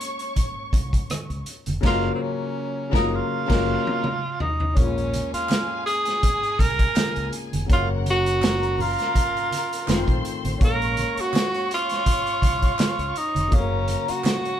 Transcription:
Already playing: G#3 A#3 C#4 F4 C#5 C#6
0.01 closed hi-hat
0.19 closed hi-hat
0.36 kick, closed hi-hat, muted conga, low conga
0.73 C2, kick, closed hi-hat, muted conga, low conga
0.93 kick, closed hi-hat
1.10 muted fretless electric bass stroke, cross-stick, closed hi-hat, high conga
1.30 C#2, closed hi-hat
1.46 closed hi-hat
1.66 F1, closed hi-hat, high conga
1.81 F#1 C#3 F#3 A#3 A#4 A#5, kick, snare, crash
1.85 F4
2.15 C4
2.22 C#4
2.90 F#1 C#3 F#3 A#3 A#4 A#5, kick
2.94 D#4 F4, snare
3.15 F4
3.46 F#1 C#3 F#3 A#3 A#4 A#5, kick, crash
3.51 F4, snare
3.87 high tom
4.04 mid tom
4.40 D#4, floor tom
4.60 floor tom
4.74 A#1 G#3 A#3 C#4 G#4 G#5, kick, closed hi-hat, muted conga
4.79 F4
4.98 closed hi-hat
5.14 closed hi-hat, muted conga
5.33 F4, muted fretless electric bass stroke, closed hi-hat
5.49 snare, clap, closed hi-hat, high conga
5.86 G#4, closed hi-hat
6.05 snare, closed hi-hat
6.23 kick, closed hi-hat, muted conga, low conga
6.43 closed hi-hat
6.59 C2 A#4, kick, closed hi-hat, muted conga, low conga
6.79 kick, closed hi-hat
6.95 C#3 G#3 A#3 F4, muted fretless electric bass stroke, snare, clap, closed hi-hat, high conga
7.16 C#2, closed hi-hat
7.33 closed hi-hat
7.53 F1, closed hi-hat, high conga
7.66 F#1 C#3 F#3 A#3 A#4 F#5, kick, closed hi-hat
7.71 C#4 F4
8.06 closed hi-hat, muted conga
8.10 F#4
8.26 closed hi-hat
8.41 A#4 A#5, snare, clap, closed hi-hat, high conga
8.63 closed hi-hat
8.78 F4, open hi-hat, low conga
8.99 snare, closed hi-hat
9.15 kick, closed hi-hat, muted conga
9.37 closed hi-hat
9.51 closed hi-hat, muted conga
9.73 closed hi-hat
9.87 F1 D#3 A3 C4 F4 C5 C6, snare, clap, closed hi-hat, high conga
10.08 A#1, kick, closed hi-hat
10.25 closed hi-hat
10.44 A1, closed hi-hat, high conga
10.58 A#1 G#3 A#3 C#4 C#5 C#6, kick, closed hi-hat, muted conga
10.63 A#4 F5
10.82 closed hi-hat
10.97 closed hi-hat, muted conga
11.17 F#4, muted fretless electric bass stroke, closed hi-hat
11.33 snare, clap, closed hi-hat, high conga
11.54 closed hi-hat
11.71 F4, closed hi-hat
11.89 snare, closed hi-hat
12.06 kick, closed hi-hat, muted conga, low conga
12.26 closed hi-hat
12.42 C2, kick, closed hi-hat, muted conga, low conga
12.62 kick, closed hi-hat
12.79 muted fretless electric bass stroke, snare, clap, closed hi-hat, high conga
12.99 C#2, closed hi-hat
13.16 D#4, closed hi-hat
13.35 F1, closed hi-hat, high conga
13.48 C#3 F#3 A3 A#4 A#5, kick, closed hi-hat, muted conga
13.53 F#1 C#4 F5
13.58 A#3
13.88 closed hi-hat, muted conga
14.08 F#4, muted fretless electric bass stroke, closed hi-hat
14.24 C#5 C#6, snare, clap, closed hi-hat, high conga
14.45 closed hi-hat

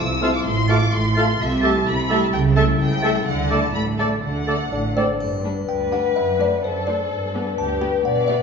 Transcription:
Already playing: F3 C4 E4 A4 E5
0.00 C2 C5 E6
0.15 E4
0.21 A3 C4 F4 A4 C5 F5 C6
0.30 C4
0.35 D6
0.45 A1 A2 C6
0.61 C4
0.69 A3 F4 A4 F5 D6 A6
0.77 F4
0.92 A1 A2 A4 C6
1.08 C4
1.16 A3 F4 A4 F5 A6
1.24 A3
1.39 C2 C3 E5
1.55 A3
1.63 A3 G4 A4 E5 A5 A6
1.71 E4
1.86 C2 C3 G4 B5
2.02 A3
2.09 A3 G4 A4 E5 A6
2.18 G3
2.22 A5
2.32 C#2 C#3 G5
2.48 A3
2.56 A3 A4 E5 A5 A6
2.64 E4
2.78 C#2 C#3 A4 G5
2.95 A3
3.02 A3 A4 E5 A6
3.11 G3
3.26 D2 D3 F#5
3.42 D4
3.50 A3 A4 D5 A5 A6
3.74 A1 A2 D4 B5
3.90 A3
3.98 A3 A4 D5 A5 A6
4.07 D4
4.23 D2 D3 F#5
4.40 A3
4.47 A3 A4 D5 A6
4.56 A4
4.71 A1 A2 D4
4.88 A3
4.96 A3 C4 A4 D5 A6
5.05 D4
5.20 G2, triangle
5.33 B3
5.44 G3 D4 B4
5.56 B4
5.68 D2 B4 G5
5.80 D5
5.91 G3 D4 B4 F#5
6.04 G4
6.16 F#2 E5
6.28 C4
6.38 A3 D4 C5 D5
6.51 C5
6.63 F#2 A4 C5 A5
6.75 D5
6.86 A3 D4 C5 D5
6.99 A4
7.10 G2
7.22 B3
7.34 B3 D4 G4 B4
7.46 B4
7.58 D2 G4 G5 A5
7.69 D5
7.81 B3 G4 B4 G5
7.93 G4
8.04 B2 D5 F#5
8.16 B3
8.28 B3 D4 G4 B4 E5

